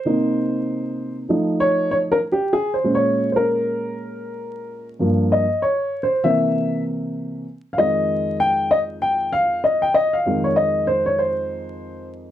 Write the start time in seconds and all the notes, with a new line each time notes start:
Already playing: C5
0.05 C3 A#3 D#4
1.29 F3 A3 D#4
1.60 C#5
1.91 C#5
2.12 A#4
2.32 G4
2.53 G#4
2.74 C5
2.84 A#2 G#3 C#4
2.95 C#5
3.32 C5
3.36 A#4
4.99 G2 F3 A#3
5.32 D#5
5.62 C#5
6.03 C5
6.23 C3 E3 A#3 E5
7.73 F5
7.78 F2 D#3 G#3 D#5
8.40 G5
8.71 D#5
9.02 G5
9.32 F5
9.64 D#5
9.82 G5
9.94 D#5
10.13 F5
10.26 F2 D#3 G#3
10.44 C#5
10.56 D#5
10.87 C5
11.06 C#5
11.19 C5